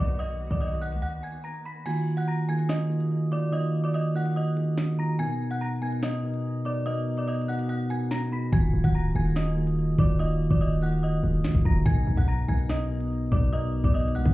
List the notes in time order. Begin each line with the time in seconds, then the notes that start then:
Already playing: D#3 A#3 B3 F#4
0.00 B1 D5 D6
0.19 D#5 D#6, closed hi-hat
0.51 B1 D5 D6, closed hi-hat
0.61 D#5 D#6, closed hi-hat
0.68 closed hi-hat
0.75 closed hi-hat
0.82 F#5 F#6, closed hi-hat
0.92 D2, closed hi-hat
1.02 F#5 F#6
1.23 G#5 G#6
1.44 A#5 A#6
1.65 B5 B6
1.86 D#3 A#3 F4 F#4 G#5 G#6, closed hi-hat, crash
2.17 F#5 F#6, closed hi-hat
2.28 A#5 A#6
2.48 D#3 A#3 F4 G#4 G#5 G#6
2.59 closed hi-hat
2.69 D#5 D#6, snare, closed hi-hat
2.89 D#3 A#3 F4 F#4
3.00 closed hi-hat
3.31 D#3 A#3 F4 F#4 D5 D6, closed hi-hat
3.51 D#3 A#3 F4 F#4 D#5 D#6, closed hi-hat
3.84 D5 D6, closed hi-hat
3.94 D#5 D#6, closed hi-hat
4.14 D#3 A#3 F4 F#4 F#5 F#6, closed hi-hat
4.26 closed hi-hat
4.36 D#5 D#6
4.55 D#3 A#3 F4 G#4, closed hi-hat
4.78 snare
4.88 closed hi-hat
4.98 D#3 A#3 F4 F#4 A#5 A#6
5.19 B2 B3 D#4 A#4 G#5 G#6, closed hi-hat
5.50 F#5 F#6, closed hi-hat
5.61 A#5 A#6
5.82 B2 B3 D#4 A#4 G#5 G#6
5.92 closed hi-hat
6.02 D#5 D#6, snare, closed hi-hat
6.23 B2 B3 D#4 A#4
6.34 closed hi-hat
6.65 B2 B3 D#4 A#4 D5 D6, closed hi-hat
6.86 B2 B3 D#4 A#4 D#5 D#6, closed hi-hat
7.17 D5 D6, closed hi-hat
7.28 D#5 D#6, closed hi-hat
7.35 closed hi-hat
7.42 closed hi-hat
7.48 B2 B3 D#4 F#4 F#5 F#6, closed hi-hat
7.59 closed hi-hat
7.69 F#5 F#6
7.90 B2 B3 D#4 A#4 G#5 G#6, closed hi-hat
8.11 A#5 A#6, snare
8.21 closed hi-hat
8.31 B2 B3 D#4 G#4 B5 B6
8.52 D#1 D#3 A#3 F4 F#4 G#5 G#6, kick, closed hi-hat
8.74 D#1
8.84 D1 F#5 F#6, kick, closed hi-hat
8.95 A#5 A#6
9.15 D#1 D#3 A#3 F4 G#4 G#5 G#6
9.26 closed hi-hat
9.36 D#5 D#6, snare, closed hi-hat
9.55 D#3 A#3 F4 F#4
9.67 closed hi-hat
9.97 D#1 D#3 A#3 F4 F#4 D5 D6, kick, closed hi-hat
10.18 D#3 A#3 F4 F#4 D#5 D#6, closed hi-hat
10.50 D#1 D5 D6, kick, closed hi-hat
10.61 D#5 D#6, closed hi-hat
10.81 D#3 A#3 F4 F#4 F#5 F#6, closed hi-hat
10.92 closed hi-hat
11.03 D#5 D#6
11.22 D#1 D#3 A#3 F4 G#4, closed hi-hat
11.44 D#2, snare
11.55 D#1, kick, closed hi-hat
11.64 D#1 D#3 A#3 F4 F#4 A#5 A#6, kick
11.86 B1 B2 B3 D#4 A#4 G#5 G#6, kick, closed hi-hat
12.07 B1
12.17 B1 F#5 F#6, kick, closed hi-hat
12.28 A#5 A#6
12.48 B1 B2 B3 D#4 A#4 G#5 G#6
12.59 closed hi-hat
12.69 D#5 D#6, snare, closed hi-hat
12.90 B2 B3 D#4 A#4
13.00 closed hi-hat
13.31 B1 B2 B3 D#4 A#4 D5 D6, kick, closed hi-hat
13.53 B2 B3 D#4 A#4 D#5 D#6, closed hi-hat
13.84 B1 D5 D6, kick, closed hi-hat
13.94 D#5 D#6, closed hi-hat
14.01 closed hi-hat
14.08 closed hi-hat
14.15 D2 B2 B3 D#4 F#4 F#5 F#6, closed hi-hat
14.26 F#2, kick, closed hi-hat